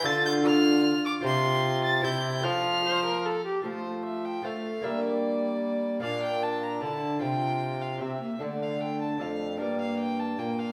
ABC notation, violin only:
X:1
M:3/4
L:1/8
Q:1/4=151
K:F
V:1 name="Violin"
a' g' f'3 d' | c'3 a' g'2 | f'4- f' z | c2 e g f2 |
e d4- d | f g a b a2 | g3 f e2 | d f g a f2 |
d f g a g f |]